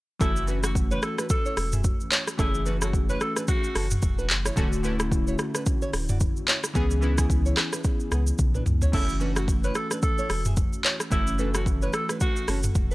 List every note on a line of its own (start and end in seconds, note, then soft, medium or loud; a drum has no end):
0.19 0.99 F#1 loud
0.19 0.45 E3 medium
0.19 0.46 A3 medium
0.19 0.47 C#4 medium
0.19 0.31 C#4 medium
0.19 0.44 E4 loud
0.19 0.47 F#4 medium
0.19 0.31 A4 loud
0.19 kick loud
0.19 shaker medium
0.36 shaker medium
0.47 1.50 E3 medium
0.47 1.51 A3 medium
0.47 1.51 C#4 medium
0.47 0.58 D4 medium
0.47 1.52 F#4 medium
0.47 0.58 B4 medium
0.47 shaker medium
0.63 0.74 F#4 medium
0.63 cross-stick loud
0.63 shaker medium
0.75 kick loud
0.75 shaker medium
0.91 0.99 E4 medium
0.91 1.01 B4 medium
0.91 0.98 C#5 medium
0.91 shaker medium
1.02 1.16 A4 medium
1.02 cross-stick loud
1.02 shaker medium
1.18 1.26 D4 medium
1.18 1.26 B4 medium
1.18 cross-stick medium
1.18 shaker loud
1.29 1.70 A4 loud
1.29 kick loud
1.29 shaker medium
1.46 1.53 E4 medium
1.46 1.53 C#5 medium
1.46 shaker medium
1.57 1.90 E1 loud
1.57 cross-stick medium
1.57 open hi-hat medium
1.57 shaker medium
1.72 1.81 G#4 medium
1.72 1.80 E5 medium
1.72 mid tom medium
1.72 shaker medium
1.84 kick loud
1.84 shaker medium
2.00 shaker soft
2.11 2.22 E4 medium
2.11 2.21 C#5 medium
2.11 clap loud
2.11 shaker medium
2.27 cross-stick medium
2.27 shaker medium
2.38 3.17 F#1 loud
2.38 2.64 E3 medium
2.38 2.64 A3 medium
2.38 2.65 C#4 medium
2.38 2.49 C#4 medium
2.38 2.62 E4 loud
2.38 2.65 G#4 medium
2.38 2.49 A4 medium
2.38 kick loud
2.38 shaker medium
2.54 shaker medium
2.65 3.69 E3 medium
2.65 3.69 A3 medium
2.65 3.70 C#4 medium
2.65 2.76 D4 medium
2.65 3.70 F#4 medium
2.65 2.76 B4 medium
2.65 shaker medium
2.82 2.90 C#4 medium
2.82 2.92 F#4 medium
2.82 2.89 A4 medium
2.82 cross-stick loud
2.82 shaker medium
2.93 kick loud
2.93 shaker medium
3.09 3.17 E4 medium
3.09 3.19 B4 medium
3.09 3.16 C#5 medium
3.09 shaker medium
3.21 3.34 A4 medium
3.21 cross-stick medium
3.21 shaker medium
3.36 3.44 D4 medium
3.36 3.44 B4 medium
3.36 cross-stick medium
3.36 shaker loud
3.48 3.89 F#4 loud
3.48 kick loud
3.48 shaker medium
3.64 shaker medium
3.75 3.96 F#1 medium
3.75 3.86 C#4 medium
3.75 3.85 A4 medium
3.75 cross-stick medium
3.75 open hi-hat medium
3.75 shaker medium
3.91 mid tom medium
3.91 shaker loud
4.02 4.31 E1 loud
4.02 kick medium
4.02 shaker medium
4.18 4.26 D4 medium
4.18 4.26 B4 medium
4.18 shaker soft
4.30 4.50 F#1 medium
4.30 clap loud
4.30 shaker medium
4.46 4.53 E4 medium
4.46 4.53 C#5 medium
4.46 cross-stick medium
4.46 shaker medium
4.56 5.35 D1 loud
4.56 4.82 D3 medium
4.56 4.83 A3 medium
4.56 4.83 C#4 medium
4.56 4.68 C#4 medium
4.56 4.83 F#4 loud
4.56 4.67 A4 loud
4.56 kick loud
4.56 shaker medium
4.72 shaker medium
4.83 5.87 D3 medium
4.83 5.87 A3 medium
4.83 5.87 C#4 medium
4.83 4.95 D4 medium
4.83 5.88 E4 loud
4.83 4.94 B4 medium
4.83 shaker medium
5.00 cross-stick loud
5.00 shaker medium
5.12 kick loud
5.12 shaker medium
5.27 5.35 E4 medium
5.27 5.35 C#5 medium
5.27 shaker medium
5.39 cross-stick medium
5.39 shaker medium
5.55 5.63 D4 medium
5.55 5.62 B4 medium
5.55 cross-stick medium
5.55 shaker loud
5.66 kick loud
5.66 shaker medium
5.82 5.90 E4 medium
5.82 5.89 C#5 medium
5.82 shaker medium
5.93 6.26 D1 loud
5.93 cross-stick medium
5.93 open hi-hat medium
5.93 shaker medium
6.09 6.17 F#4 medium
6.09 6.17 D5 medium
6.09 mid tom medium
6.09 shaker medium
6.20 kick medium
6.20 shaker medium
6.37 shaker soft
6.48 6.58 E4 medium
6.48 6.58 C#5 medium
6.48 clap loud
6.48 shaker medium
6.64 cross-stick medium
6.64 shaker medium
6.74 7.53 C#2 loud
6.74 7.00 E3 medium
6.74 7.01 B3 medium
6.74 6.86 B3 medium
6.74 7.01 C#4 medium
6.74 6.85 G#4 medium
6.74 7.02 G#4 loud
6.74 kick loud
6.74 shaker medium
6.91 shaker medium
7.01 8.05 E3 medium
7.01 8.05 B3 medium
7.01 8.06 C#4 medium
7.01 7.13 D4 medium
7.01 8.06 E4 loud
7.01 7.12 B4 medium
7.01 shaker medium
7.18 7.26 B3 medium
7.18 7.25 G#4 medium
7.18 kick medium
7.18 cross-stick loud
7.18 shaker medium
7.30 kick loud
7.30 shaker medium
7.46 7.53 E4 medium
7.46 7.53 C#5 medium
7.46 shaker medium
7.57 cross-stick loud
7.57 clap loud
7.57 shaker medium
7.73 7.81 D4 medium
7.73 7.80 B4 medium
7.73 cross-stick medium
7.73 shaker loud
7.84 kick loud
7.84 shaker medium
8.00 shaker soft
8.11 8.32 C#2 loud
8.11 8.22 B3 medium
8.11 8.22 G#4 medium
8.11 cross-stick medium
8.11 shaker medium
8.27 shaker loud
8.38 8.59 B1 loud
8.38 kick medium
8.38 high tom medium
8.38 shaker medium
8.54 8.63 D4 medium
8.54 8.62 B4 medium
8.54 mid tom medium
8.54 shaker soft
8.66 8.87 C#2 medium
8.66 mid tom loud
8.66 shaker medium
8.82 8.90 E4 medium
8.82 8.89 C#5 medium
8.82 floor tom medium
8.82 shaker medium
8.92 9.71 F#1 loud
8.92 9.18 E3 medium
8.92 9.19 A3 medium
8.92 9.19 C#4 medium
8.92 9.04 C#4 medium
8.92 9.17 E4 loud
8.92 9.20 F#4 medium
8.92 9.04 A4 loud
8.92 kick loud
8.92 crash medium
9.09 shaker medium
9.19 10.23 E3 medium
9.19 10.23 A3 medium
9.19 10.24 C#4 medium
9.19 9.31 D4 medium
9.19 10.24 F#4 medium
9.19 9.31 B4 medium
9.19 shaker medium
9.36 9.47 F#4 medium
9.36 cross-stick loud
9.36 shaker medium
9.48 kick loud
9.48 shaker medium
9.64 9.72 E4 medium
9.64 9.74 B4 medium
9.64 9.71 C#5 medium
9.64 shaker medium
9.75 9.89 A4 medium
9.75 cross-stick medium
9.75 shaker medium
9.91 9.99 D4 medium
9.91 9.99 B4 medium
9.91 cross-stick medium
9.91 shaker loud
10.02 10.43 A4 loud
10.02 kick loud
10.02 shaker medium
10.18 10.26 E4 medium
10.18 10.26 C#5 medium
10.18 shaker medium
10.30 10.62 E1 medium
10.30 cross-stick medium
10.30 open hi-hat medium
10.30 shaker medium
10.45 10.54 G#4 medium
10.45 10.53 E5 medium
10.45 mid tom loud
10.45 shaker medium
10.57 kick medium
10.57 shaker medium
10.73 shaker soft
10.84 10.95 E4 medium
10.84 10.94 C#5 medium
10.84 clap loud
10.84 shaker medium
11.00 cross-stick medium
11.00 shaker medium
11.10 11.89 F#1 loud
11.10 11.37 E3 medium
11.10 11.37 A3 medium
11.10 11.38 C#4 medium
11.10 11.22 C#4 medium
11.10 11.35 E4 loud
11.10 11.38 F#4 medium
11.10 11.22 A4 medium
11.10 kick loud
11.10 shaker medium
11.27 shaker medium
11.38 12.41 E3 medium
11.38 12.42 A3 medium
11.38 12.42 C#4 medium
11.38 11.49 D4 medium
11.38 12.43 A4 medium
11.38 11.49 B4 medium
11.38 shaker medium
11.54 11.63 C#4 medium
11.54 11.65 F#4 medium
11.54 11.62 A4 medium
11.54 cross-stick loud
11.54 shaker loud
11.66 kick medium
11.66 shaker medium
11.82 11.90 E4 medium
11.82 11.92 B4 medium
11.82 11.89 C#5 medium
11.82 shaker medium
11.93 12.07 A4 medium
11.93 cross-stick loud
11.93 shaker medium
12.09 12.17 D4 medium
12.09 12.17 B4 medium
12.09 cross-stick medium
12.09 shaker loud
12.20 12.62 F#4 loud
12.20 kick loud
12.20 shaker medium
12.36 shaker medium
12.48 12.69 F#1 medium
12.48 12.59 C#4 medium
12.48 12.58 A4 medium
12.48 cross-stick medium
12.48 open hi-hat medium
12.48 shaker medium
12.63 mid tom medium
12.63 shaker loud
12.75 12.95 E1 medium
12.75 kick loud
12.75 shaker medium
12.91 12.95 B4 medium
12.91 shaker soft